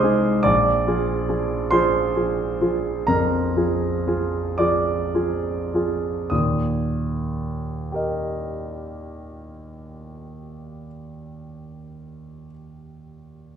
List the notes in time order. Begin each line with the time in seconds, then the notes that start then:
Already playing: C2 G#3 D#4 G#4 C5 D#5 C6 D6 D#6 F6
0.03 G#3 D#4 G#4
0.43 A#1 D5 D6
0.87 F3 F4 G#4
1.29 F3 F4 G#4
1.71 F3 F4 G#4 C5 C6
2.16 F3 F4 G#4
2.61 F3 F4 G#4
3.07 F2 A#4 A#5
3.57 F3 F4 G#4
4.07 F3 F4 G#4
4.58 F3 F4 G#4 D5 D6
5.14 F3 F4 G#4
5.74 F3 F4 G#4
6.30 D#2 A#2 D#6
7.92 G4 A#4
7.96 D#5